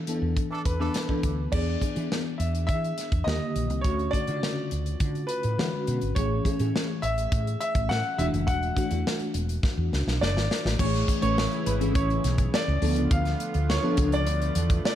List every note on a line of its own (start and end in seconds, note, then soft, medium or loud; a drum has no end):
0.00 0.07 E3 medium
0.00 0.08 B3 medium
0.00 0.08 D4 medium
0.00 0.09 A4 medium
0.00 0.91 A4 medium
0.07 0.66 E3 medium
0.07 0.66 B3 medium
0.07 0.66 D4 medium
0.07 0.66 A4 medium
0.07 closed hi-hat medium
0.22 0.33 E2 medium
0.37 kick medium
0.37 closed hi-hat medium
0.51 0.60 E3 medium
0.51 0.60 D4 medium
0.51 0.60 A4 medium
0.65 0.88 E2 medium
0.65 1.55 B4 medium
0.65 kick medium
0.65 closed hi-hat medium
0.79 0.98 E3 medium
0.79 1.03 E3 medium
0.79 1.03 B3 medium
0.79 0.98 D4 medium
0.79 1.03 D4 medium
0.79 0.98 A4 loud
0.79 1.04 A4 medium
0.94 snare loud
0.94 closed hi-hat medium
1.09 1.44 E3 medium
1.09 1.44 B3 medium
1.09 1.44 D4 medium
1.09 1.44 A4 medium
1.09 kick medium
1.23 1.46 D2 medium
1.23 kick medium
1.23 closed hi-hat medium
1.52 1.75 E2 medium
1.52 1.76 E3 medium
1.52 1.76 B3 medium
1.52 1.76 D4 medium
1.52 1.76 G#4 medium
1.52 2.42 D5 medium
1.52 kick loud
1.52 crash medium
1.81 1.93 E3 medium
1.81 1.93 B3 medium
1.81 1.93 D4 medium
1.81 1.94 G#4 medium
1.81 kick medium
1.81 closed hi-hat medium
1.95 2.89 E3 medium
1.95 2.08 E3 medium
1.95 2.89 B3 medium
1.95 2.89 D4 medium
1.95 2.89 G#4 medium
1.95 closed hi-hat soft
2.12 snare loud
2.38 2.70 E2 medium
2.38 2.65 E5 medium
2.38 closed hi-hat medium
2.55 closed hi-hat soft
2.67 2.91 E3 loud
2.67 3.27 E5 medium
2.67 kick medium
2.67 closed hi-hat medium
2.84 closed hi-hat soft
2.98 snare soft
2.98 closed hi-hat medium
3.12 3.23 E2 medium
3.12 kick medium
3.12 closed hi-hat soft
3.24 3.38 D#2 medium
3.24 3.73 D3 medium
3.24 3.73 D#3 medium
3.24 3.73 A#3 medium
3.24 3.73 G4 medium
3.24 3.79 D#5 medium
3.24 snare loud
3.56 3.70 A#1 medium
3.56 closed hi-hat medium
3.70 3.81 C2 medium
3.70 closed hi-hat soft
3.81 4.07 D2 loud
3.81 4.07 D3 medium
3.81 4.08 A3 medium
3.81 4.08 C#4 medium
3.81 4.08 F#4 medium
3.81 4.13 C#5 medium
3.81 kick loud
3.81 closed hi-hat medium
3.99 closed hi-hat soft
4.11 4.25 D3 medium
4.11 4.25 A3 medium
4.11 4.25 C#4 medium
4.11 4.26 F#4 medium
4.11 5.32 D5 loud
4.11 kick medium
4.11 closed hi-hat medium
4.27 5.22 C#3 medium
4.27 4.39 D3 medium
4.27 5.21 D3 medium
4.27 5.21 A3 medium
4.27 4.35 F4 medium
4.27 closed hi-hat soft
4.36 5.25 F#4 medium
4.43 snare loud
4.71 4.94 D2 medium
4.71 closed hi-hat medium
4.86 closed hi-hat soft
5.00 5.23 D3 loud
5.00 kick medium
5.00 closed hi-hat medium
5.15 closed hi-hat soft
5.27 6.11 B4 medium
5.27 closed hi-hat medium
5.43 5.55 A2 medium
5.43 closed hi-hat soft
5.58 6.05 D3 medium
5.58 5.70 E3 medium
5.58 6.05 G#3 medium
5.58 6.05 C#4 medium
5.58 6.05 F#4 medium
5.58 snare loud
5.87 5.99 B2 medium
5.87 closed hi-hat medium
6.01 6.13 G#1 medium
6.01 closed hi-hat soft
6.15 6.39 A1 loud
6.15 6.40 E3 medium
6.15 6.40 A3 medium
6.15 6.40 C#4 medium
6.15 6.40 G#4 medium
6.15 7.05 C#5 medium
6.15 kick loud
6.15 closed hi-hat medium
6.45 6.57 E3 medium
6.45 6.57 A3 medium
6.45 6.57 C#4 medium
6.45 6.57 G#4 medium
6.45 kick medium
6.45 closed hi-hat medium
6.59 6.71 A2 medium
6.59 7.52 E3 medium
6.59 7.53 A3 medium
6.59 7.53 C#4 medium
6.59 7.53 G#4 medium
6.59 closed hi-hat soft
6.76 snare loud
7.02 7.25 A1 medium
7.02 7.59 E5 loud
7.02 closed hi-hat medium
7.18 closed hi-hat soft
7.32 7.55 A2 loud
7.32 kick loud
7.32 closed hi-hat medium
7.47 closed hi-hat soft
7.60 7.88 E5 loud
7.60 closed hi-hat medium
7.75 7.87 A1 medium
7.75 kick medium
7.75 closed hi-hat soft
7.89 8.01 A2 medium
7.89 8.16 F#5 loud
7.89 snare loud
8.18 8.30 E1 loud
8.18 8.65 E3 medium
8.18 8.25 G#3 medium
8.18 8.65 D4 medium
8.18 8.66 F#4 medium
8.18 8.25 E5 loud
8.18 closed hi-hat medium
8.25 8.69 A3 medium
8.33 8.48 F#1 medium
8.33 closed hi-hat soft
8.47 8.70 E1 loud
8.47 9.01 F#5 loud
8.47 kick loud
8.47 closed hi-hat medium
8.63 closed hi-hat soft
8.76 8.88 E3 medium
8.76 8.88 A3 medium
8.76 8.89 D4 medium
8.76 8.89 F#4 medium
8.76 kick medium
8.76 closed hi-hat medium
8.90 9.02 E2 medium
8.90 9.84 E3 medium
8.90 9.84 A3 medium
8.90 9.84 D4 medium
8.90 9.85 F#4 medium
8.90 closed hi-hat soft
9.07 snare loud
9.19 closed hi-hat soft
9.34 9.57 E1 medium
9.34 closed hi-hat medium
9.49 closed hi-hat soft
9.63 kick loud
9.63 snare medium
9.77 9.89 E2 medium
9.92 10.04 C#2 medium
9.92 snare medium
10.07 10.18 B1 medium
10.07 snare medium
10.21 10.36 F#1 medium
10.21 10.75 D5 medium
10.21 snare medium
10.36 10.47 G#1 medium
10.36 snare medium
10.51 snare medium
10.65 10.76 A1 medium
10.65 snare medium
10.79 11.02 A1 loud
10.79 12.80 C#3 medium
10.79 11.14 E3 medium
10.79 12.80 E3 medium
10.79 11.14 A3 medium
10.79 14.95 A3 medium
10.79 11.14 C#4 medium
10.79 12.80 E4 loud
10.79 12.80 G#4 medium
10.79 11.14 G#4 medium
10.79 11.21 C#5 medium
10.79 kick loud
10.79 crash loud
10.94 snare soft
10.94 closed hi-hat soft
11.08 kick medium
11.08 closed hi-hat medium
11.21 11.45 A1 loud
11.21 11.68 E3 medium
11.21 11.69 A3 medium
11.21 11.69 C#4 medium
11.21 11.69 B4 medium
11.21 11.67 C#5 medium
11.21 closed hi-hat medium
11.38 snare loud
11.52 closed hi-hat soft
11.66 11.95 G#1 medium
11.66 11.73 B4 medium
11.66 closed hi-hat medium
11.80 12.73 E3 medium
11.80 12.73 A3 medium
11.80 12.74 C#4 medium
11.80 12.74 G#4 medium
11.80 closed hi-hat medium
11.95 12.18 A1 loud
11.95 12.49 C#5 medium
11.95 kick loud
11.95 closed hi-hat medium
12.10 closed hi-hat soft
12.24 12.47 B1 medium
12.24 snare soft
12.24 closed hi-hat medium
12.38 kick medium
12.38 closed hi-hat soft
12.54 13.13 D5 medium
12.54 snare loud
12.68 12.79 C#2 medium
12.80 12.97 D2 medium
12.80 14.95 D3 medium
12.80 14.95 F3 medium
12.80 13.63 F3 medium
12.80 14.95 B3 medium
12.80 13.63 B3 medium
12.80 13.63 D4 medium
12.80 14.95 F4 medium
12.80 13.63 A4 medium
12.80 open hi-hat medium
12.96 13.08 C#2 medium
12.96 closed hi-hat soft
13.11 13.33 D2 loud
13.11 13.65 F5 medium
13.11 kick loud
13.11 closed hi-hat medium
13.25 snare soft
13.25 closed hi-hat soft
13.40 closed hi-hat medium
13.54 13.77 D2 medium
13.54 closed hi-hat soft
13.69 14.14 C#5 medium
13.69 snare loud
13.83 13.95 F3 medium
13.83 13.95 B3 medium
13.83 13.95 D4 medium
13.83 13.95 A4 medium
13.97 14.27 C#2 medium
13.97 14.90 F3 medium
13.97 14.90 B3 medium
13.97 14.91 D4 medium
13.97 14.91 A4 medium
13.97 kick medium
13.97 closed hi-hat medium
14.12 14.84 D5 loud
14.12 closed hi-hat soft
14.27 14.49 D2 loud
14.27 closed hi-hat medium
14.42 closed hi-hat soft
14.55 14.78 E2 medium
14.55 closed hi-hat medium
14.70 kick medium
14.70 closed hi-hat soft
14.85 14.95 D5 loud
14.85 snare loud